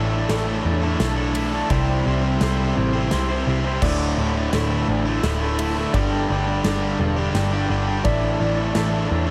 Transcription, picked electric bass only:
0.00 0.24 A1 loud
0.29 0.60 A1 loud
0.65 0.95 E2 loud
1.00 1.61 B1 loud
1.70 2.01 C2 loud
2.06 2.37 C2 medium
2.41 2.72 C2 loud
2.77 3.07 A1 loud
3.12 3.43 C2 loud
3.47 3.78 C2 medium
3.82 4.13 D1 loud
4.18 4.48 D1 medium
4.53 4.83 D1 loud
4.88 5.19 A1 loud
5.23 5.84 D1 loud
5.94 6.24 G1 loud
6.30 6.60 G1 loud
6.64 6.95 G1 loud
6.99 7.30 E1 loud
7.34 7.65 G1 loud
7.70 8.00 G1 loud
8.05 8.35 A1 loud
8.40 8.71 A1 medium
8.75 9.06 A1 loud
9.11 9.31 E2 loud

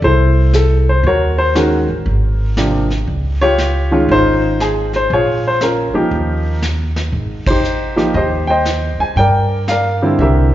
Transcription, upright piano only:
0.04 1.01 E4 medium
0.04 0.53 A4 medium
0.04 0.55 C5 medium
0.55 0.88 A4 medium
0.89 1.06 C5 medium
1.07 1.54 F#4 medium
1.07 1.56 A#4 medium
1.07 1.40 C#5 medium
1.38 1.56 C5 medium
1.55 1.85 D#3 medium
1.55 1.85 G#3 medium
1.55 1.85 C#4 medium
1.55 1.85 F#4 medium
1.55 2.54 A#4 medium
2.57 2.87 C3 medium
2.57 2.87 F3 soft
2.57 2.87 A#3 soft
2.57 2.87 D4 medium
3.41 3.91 F4 medium
3.41 4.39 G4 medium
3.41 4.11 C#5 loud
3.91 4.56 D#3 medium
3.91 4.56 G#3 medium
3.91 4.56 C#4 medium
3.91 4.10 F4 medium
4.11 5.08 D#4 medium
4.11 5.08 F4 medium
4.11 4.62 C5 loud
4.61 4.95 G#4 medium
4.96 5.12 C5 medium
5.13 5.61 F4 medium
5.13 6.09 G#4 medium
5.13 5.43 C#5 medium
5.47 5.63 C5 medium
5.62 6.59 C#4 soft
5.62 6.59 F4 medium
5.62 6.59 A#4 medium
5.94 6.59 F3 medium
5.94 6.59 A#3 medium
5.94 6.59 D#4 medium
5.94 6.59 G4 medium
7.47 7.95 D#4 medium
7.47 7.96 G4 medium
7.47 8.11 C5 medium
7.96 8.12 F3 medium
7.96 8.12 A#3 medium
7.96 8.13 D#4 medium
7.96 8.13 G4 medium
8.15 9.14 G4 medium
8.15 8.48 C5 medium
8.15 8.22 D#5 medium
8.47 9.13 C5 medium
8.47 9.13 D#5 medium
8.47 9.00 G5 medium
9.00 9.16 G#5 medium
9.17 9.69 A#4 medium
9.17 9.69 D5 medium
9.17 9.69 G5 medium
9.68 10.16 A#4 medium
9.68 10.16 D5 medium
9.68 10.20 F5 medium
10.02 10.54 D3 medium
10.02 10.54 G3 medium
10.02 10.54 C4 medium
10.02 10.53 E4 medium
10.20 10.53 G4 medium
10.20 10.54 A#4 medium
10.20 10.28 E5 medium

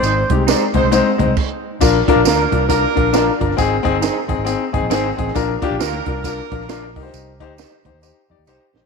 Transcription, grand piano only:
0.00 0.19 G#3 medium
0.00 0.20 C4 medium
0.00 0.20 D#4 medium
0.00 0.23 C5 medium
0.30 0.41 G#3 medium
0.30 0.41 C4 medium
0.30 0.42 D#4 medium
0.30 0.42 G4 medium
0.47 0.65 G#3 medium
0.47 0.65 C4 medium
0.47 0.65 D#4 medium
0.47 0.65 D5 medium
0.74 0.85 G#3 medium
0.74 0.86 C4 medium
0.74 0.86 D#4 medium
0.74 0.86 C5 loud
0.91 1.09 G#3 loud
0.91 1.09 C4 medium
0.91 1.09 D#4 loud
0.91 1.10 C5 loud
1.18 1.30 G#3 medium
1.18 1.30 C4 medium
1.18 1.30 D#4 medium
1.18 1.31 C5 medium
1.81 1.98 D4 loud
1.81 1.98 F4 loud
1.81 1.98 A#4 loud
2.08 2.19 D4 loud
2.08 2.19 F4 loud
2.08 2.19 A#4 loud
2.26 2.43 F4 medium
2.26 2.43 A#4 loud
2.51 2.63 D4 medium
2.51 2.63 F4 medium
2.51 2.63 A#4 medium
2.69 2.86 D4 loud
2.69 2.86 F4 medium
2.69 2.87 A#4 loud
2.95 3.07 D4 medium
2.95 3.07 F4 medium
2.95 3.08 A#4 loud
3.13 3.30 D4 loud
3.13 3.31 F4 loud
3.13 3.31 A#4 loud
3.40 3.51 D4 medium
3.40 3.52 F4 medium
3.40 3.52 A#4 loud
3.57 3.74 C4 loud
3.57 3.75 D#4 loud
3.57 3.75 G#4 loud
3.83 3.95 C4 loud
3.83 3.95 D#4 loud
3.83 3.96 G#4 loud
4.00 4.18 C4 medium
4.00 4.19 D#4 medium
4.00 4.19 G#4 loud
4.28 4.40 C4 medium
4.28 4.40 D#4 medium
4.28 4.40 G#4 loud
4.45 4.63 C4 loud
4.45 4.63 D#4 medium
4.45 4.64 G#4 loud
4.73 4.84 C4 medium
4.73 4.85 D#4 medium
4.73 4.85 G#4 loud
4.73 4.90 D#5 medium
4.90 5.08 C4 loud
4.90 5.08 D#4 loud
4.90 5.08 G#4 loud
4.90 5.32 G#5 medium
5.17 5.29 C4 medium
5.17 5.29 D#4 medium
5.17 5.29 G#4 loud
5.35 5.52 D4 loud
5.35 5.53 F4 loud
5.35 5.53 A#4 loud
5.62 5.73 D4 loud
5.62 5.74 F4 loud
5.62 5.74 G4 loud
5.79 5.97 D4 medium
5.79 5.97 F4 medium
5.79 5.98 A#4 medium
6.07 6.18 D4 medium
6.07 6.18 F4 medium
6.07 6.19 A#4 medium
6.24 6.42 D4 loud
6.24 6.42 F4 medium
6.24 6.42 A#4 loud
6.51 6.62 D4 medium
6.51 6.63 F4 medium
6.51 6.63 A#4 loud
6.69 6.86 D4 loud
6.69 6.86 F4 loud
6.69 6.87 A#4 loud
6.96 7.30 D#4 loud
6.96 7.30 G4 medium
6.96 7.01 A#4 medium
7.03 7.33 C5 loud
7.40 7.52 D#4 loud
7.40 7.52 G4 loud
7.40 7.52 C5 loud
7.58 7.75 D#4 medium
7.58 7.76 G4 medium
7.58 7.76 C5 loud
7.85 7.96 D#4 medium
7.85 7.97 G4 medium
7.85 7.97 C5 loud
8.02 8.20 D#4 medium
8.02 8.20 G4 medium
8.02 8.20 C5 medium
8.30 8.41 D#4 medium
8.30 8.41 G4 medium
8.30 8.42 D5 loud
8.47 8.64 D#4 loud
8.47 8.65 G4 loud
8.47 8.65 C5 loud
8.75 8.86 D#4 medium
8.75 8.86 G4 medium
8.75 8.86 C5 medium

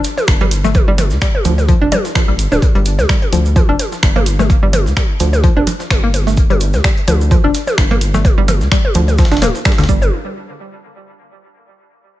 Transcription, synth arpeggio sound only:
0.41 0.43 G3 loud
0.64 0.69 A3 medium
0.88 0.90 G3 loud
1.22 1.27 G3 medium
1.45 1.53 F3 medium
1.69 1.74 F3 loud
1.82 1.88 D4 loud
1.92 1.97 G3 medium
2.15 2.20 F3 medium
2.28 2.31 G3 medium
2.52 2.56 D4 medium
2.75 2.78 G3 loud
3.09 3.14 G3 medium
3.33 3.40 F3 medium
3.56 3.61 F3 loud
3.69 3.75 D4 loud
4.16 4.20 A#3 loud
4.39 4.43 A3 medium
4.63 4.65 G3 loud
4.97 5.02 G3 medium
5.20 5.28 F3 medium
5.44 5.49 F3 loud
5.57 5.63 D4 loud
6.04 6.08 A#3 loud
6.27 6.31 A3 medium
6.50 6.53 G3 loud
6.84 6.89 G3 medium
7.08 7.15 F3 medium
7.31 7.36 F3 loud
7.44 7.50 D4 loud
7.91 7.95 A#3 loud
8.14 8.18 A3 medium
8.38 8.40 G3 loud
8.72 8.77 G3 medium
8.95 9.03 F3 medium
9.19 9.24 F3 loud
9.32 9.38 D4 loud
9.42 9.50 A#3 loud
9.65 9.71 G3 loud
9.78 9.81 D3 medium
9.89 10.11 G3 medium

